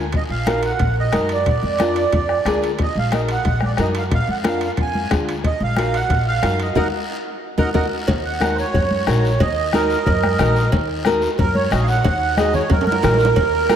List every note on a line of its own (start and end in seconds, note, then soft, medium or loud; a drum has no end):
0.00 0.14 D2 medium
0.12 0.21 D#2 medium
0.12 0.23 D#5 medium
0.12 bombo low medium
0.12 high conga soft
0.12 high timbale medium
0.12 long guiro medium
0.29 0.70 A#1 medium
0.29 0.61 F5 medium
0.45 0.70 D#4 medium
0.45 0.71 F#4 medium
0.45 0.71 A#4 medium
0.45 bombo rim medium
0.45 high conga medium
0.45 high timbale medium
0.45 short guiro medium
0.63 0.95 F#5 medium
0.63 high timbale medium
0.63 short guiro medium
0.79 1.07 A#1 medium
0.79 bombo low medium
0.79 high conga soft
0.79 high timbale medium
0.79 long guiro medium
0.99 1.32 D#5 medium
1.12 1.48 F#2 medium
1.12 1.36 D#4 medium
1.12 1.36 F#4 medium
1.12 1.36 A#4 medium
1.12 bombo rim medium
1.12 high conga medium
1.12 high timbale medium
1.12 short guiro medium
1.29 2.60 D5 medium
1.29 high timbale medium
1.29 short guiro medium
1.46 1.53 A#1 medium
1.46 bombo low medium
1.46 high conga soft
1.46 high timbale medium
1.46 long guiro medium
1.63 2.03 F2 medium
1.63 high conga medium
1.79 2.03 D4 medium
1.79 2.03 F4 medium
1.79 2.03 A#4 medium
1.79 bombo rim medium
1.79 high conga medium
1.79 high timbale medium
1.79 short guiro medium
1.96 high timbale medium
1.96 short guiro medium
2.12 2.39 F2 medium
2.12 bombo low medium
2.12 high conga soft
2.12 high timbale medium
2.12 long guiro medium
2.29 bombo rim medium
2.45 2.79 D2 medium
2.45 2.69 D4 medium
2.45 2.70 F4 medium
2.45 2.70 G#4 medium
2.45 2.77 A#4 medium
2.45 bombo rim medium
2.45 high conga medium
2.45 high timbale medium
2.45 short guiro medium
2.62 high timbale medium
2.62 short guiro medium
2.79 2.86 D#2 medium
2.79 2.98 D#5 medium
2.79 bombo low medium
2.79 high conga soft
2.79 high timbale medium
2.79 long guiro medium
2.95 3.35 A#1 medium
2.95 3.13 F5 medium
2.95 high conga medium
3.12 3.35 D#4 medium
3.12 3.35 F#4 medium
3.12 3.36 A#4 medium
3.12 3.21 D#5 medium
3.12 bombo rim medium
3.12 high conga medium
3.12 high timbale medium
3.12 short guiro medium
3.29 3.61 F#5 medium
3.29 high timbale medium
3.29 short guiro medium
3.45 3.72 A#1 medium
3.45 bombo low medium
3.45 high conga soft
3.45 high timbale medium
3.45 long guiro medium
3.61 bombo rim medium
3.61 high conga medium
3.65 3.72 D5 medium
3.77 4.13 F#2 medium
3.77 4.01 D#4 medium
3.77 4.02 F#4 medium
3.77 4.02 A#4 medium
3.77 bombo rim medium
3.77 high conga medium
3.77 high timbale medium
3.77 low timbale medium
3.77 short guiro medium
3.81 3.88 D#5 medium
3.95 4.05 F5 medium
3.95 high timbale medium
3.95 short guiro medium
4.11 4.18 A#1 medium
4.11 4.28 F5 medium
4.11 bombo low medium
4.11 high conga soft
4.11 high timbale medium
4.11 long guiro medium
4.28 4.68 F2 medium
4.28 4.38 F#5 medium
4.28 high conga medium
4.44 4.67 D4 medium
4.44 4.68 F4 medium
4.44 4.68 A#4 medium
4.44 4.61 F5 medium
4.44 bombo rim medium
4.44 high conga medium
4.44 high timbale medium
4.44 short guiro medium
4.61 4.71 F5 medium
4.61 high timbale medium
4.61 short guiro medium
4.77 5.04 F2 medium
4.77 bombo low medium
4.77 high conga soft
4.77 high timbale medium
4.77 long guiro medium
4.81 5.10 G#5 medium
4.95 high conga medium
5.10 5.44 D2 medium
5.10 5.34 D4 medium
5.10 5.34 F4 medium
5.10 5.34 G#4 medium
5.10 bombo low medium
5.10 bombo rim medium
5.10 high conga medium
5.10 high timbale medium
5.10 short guiro medium
5.29 high timbale medium
5.29 short guiro medium
5.44 5.51 D#2 medium
5.44 5.62 D#5 medium
5.44 bombo low medium
5.44 high conga soft
5.44 high timbale medium
5.44 long guiro medium
5.60 6.00 A#1 medium
5.60 5.96 F5 medium
5.60 high conga medium
5.77 6.01 D#4 medium
5.77 6.01 F#4 medium
5.77 6.01 A#4 medium
5.77 bombo rim medium
5.77 high conga medium
5.77 high timbale medium
5.77 short guiro medium
5.94 6.25 F#5 loud
5.94 high timbale medium
5.94 short guiro medium
6.09 6.36 A#1 medium
6.09 bombo low medium
6.09 high conga soft
6.09 high timbale medium
6.09 long guiro medium
6.28 6.61 F5 loud
6.42 6.75 F#2 medium
6.42 6.66 D#4 medium
6.42 6.67 F#4 medium
6.42 6.67 A#4 medium
6.42 bombo rim medium
6.42 high conga medium
6.42 high timbale medium
6.42 short guiro medium
6.60 6.76 D#5 medium
6.60 high timbale medium
6.60 short guiro medium
6.75 6.88 D#2 medium
6.75 6.87 D#4 medium
6.75 6.87 F#4 medium
6.75 6.87 A#4 medium
6.75 6.88 A#4 medium
6.75 6.88 D#5 medium
6.75 6.88 F#5 medium
6.75 bombo low medium
6.75 high conga medium
6.75 high timbale medium
6.75 long guiro medium
7.58 7.71 D#2 medium
7.58 7.69 D#4 medium
7.58 7.69 F#4 medium
7.58 7.69 A#4 medium
7.58 7.70 A#4 medium
7.58 7.70 D#5 medium
7.58 7.69 F#5 medium
7.58 bombo low medium
7.58 high conga medium
7.58 high timbale medium
7.58 long guiro medium
7.74 7.88 D#2 medium
7.74 7.85 D#4 medium
7.74 7.85 F#4 medium
7.74 7.86 A#4 medium
7.74 7.86 D#5 medium
7.74 7.86 F#5 medium
7.74 bombo low medium
7.74 high conga medium
7.74 high timbale medium
7.74 long guiro medium
8.08 8.61 D#2 loud
8.08 bombo low medium
8.08 cowbell loud
8.08 long guiro medium
8.25 8.57 F#5 medium
8.40 8.64 D#4 medium
8.40 8.64 F#4 medium
8.40 8.64 A#4 medium
8.40 bombo rim medium
8.40 high conga medium
8.40 short guiro medium
8.55 8.57 C5 medium
8.55 short guiro medium
8.60 9.06 C#5 medium
8.74 9.01 F#2 medium
8.74 bombo low medium
8.74 cowbell medium
8.74 long guiro medium
8.91 high conga medium
9.07 9.34 A#1 loud
9.07 9.30 D#4 medium
9.07 9.31 F#4 medium
9.07 9.31 A#4 medium
9.07 9.40 C#5 medium
9.07 bombo rim medium
9.07 high conga medium
9.07 short guiro medium
9.25 short guiro medium
9.40 9.93 D#2 loud
9.40 9.73 D#5 medium
9.40 bombo low medium
9.40 cowbell loud
9.40 long guiro medium
9.73 9.97 D#4 medium
9.73 9.97 F#4 medium
9.73 10.69 A#4 medium
9.73 9.97 A#4 medium
9.73 10.70 D#5 medium
9.73 bombo rim medium
9.73 high conga medium
9.73 short guiro medium
9.90 short guiro medium
10.06 10.33 F#2 loud
10.06 bombo low medium
10.06 cowbell medium
10.06 long guiro medium
10.23 bombo rim medium
10.23 high conga medium
10.39 10.66 A#1 loud
10.39 10.63 D#4 medium
10.39 10.63 F#4 medium
10.39 10.63 A#4 medium
10.39 bombo rim medium
10.39 high conga medium
10.39 low conga medium
10.39 short guiro medium
10.56 short guiro medium
10.72 11.25 D#2 loud
10.72 bombo low medium
10.72 cowbell medium
10.72 long guiro medium
11.05 11.29 D#4 medium
11.05 11.29 F#4 medium
11.05 11.29 A#4 loud
11.05 bombo rim medium
11.05 high conga medium
11.05 short guiro medium
11.22 short guiro medium
11.38 11.65 F#2 medium
11.38 11.55 A#4 loud
11.38 bombo low medium
11.38 cowbell medium
11.38 long guiro medium
11.55 11.71 C#5 medium
11.55 high conga medium
11.71 11.98 A#1 loud
11.71 11.95 D#4 medium
11.71 11.95 F#4 medium
11.71 11.96 C#5 medium
11.71 11.88 D#5 medium
11.71 bombo rim medium
11.71 high conga medium
11.71 short guiro medium
11.83 11.86 F5 medium
11.88 12.36 F#5 loud
11.88 short guiro medium
12.05 12.58 D#2 loud
12.05 bombo low medium
12.05 cowbell loud
12.05 long guiro medium
12.37 12.61 D#4 medium
12.37 12.61 F#4 medium
12.37 12.61 G#4 medium
12.37 12.54 D#5 medium
12.37 bombo rim medium
12.37 high conga medium
12.37 short guiro medium
12.53 12.70 C#5 medium
12.53 low conga medium
12.53 short guiro medium
12.70 12.97 F#2 medium
12.70 12.85 A#4 medium
12.70 bombo low medium
12.70 cowbell medium
12.70 high timbale medium
12.70 long guiro medium
12.81 12.85 A4 medium
12.81 high timbale medium
12.86 13.76 A#4 loud
12.86 high conga medium
12.92 low timbale medium
13.03 13.30 A#1 loud
13.03 13.27 D#4 medium
13.03 13.27 F#4 medium
13.03 13.27 A#4 medium
13.03 bombo rim medium
13.03 high conga medium
13.03 low conga medium
13.03 low timbale medium
13.03 short guiro medium
13.14 low timbale medium
13.19 short guiro medium
13.25 low timbale medium
13.36 13.76 D#2 loud
13.36 bombo low medium
13.36 cowbell loud
13.36 long guiro medium
13.69 13.76 D#4 medium
13.69 13.76 F#4 medium
13.69 13.76 A#4 loud
13.69 bombo rim medium
13.69 high conga medium
13.69 short guiro medium